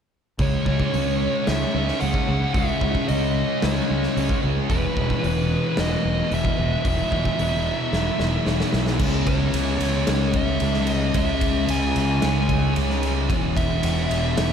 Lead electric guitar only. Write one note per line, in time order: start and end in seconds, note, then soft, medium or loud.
0.42 1.51 C#5 medium
1.48 2.00 E5 medium
2.01 2.54 F#5 loud
2.54 3.08 E5 loud
3.08 3.64 D#5 medium
3.63 4.39 C#5 medium
4.71 5.81 B4 medium
5.80 6.34 D#5 loud
6.34 6.87 E5 loud
6.88 8.44 E5 loud
9.27 10.08 C#5 medium
10.09 10.36 C#5 medium
10.36 10.92 E5 medium
10.92 11.15 D#5 medium
11.16 11.71 E5 loud
11.70 12.73 G#5 medium
13.57 14.36 E5 medium
14.37 14.53 E5 medium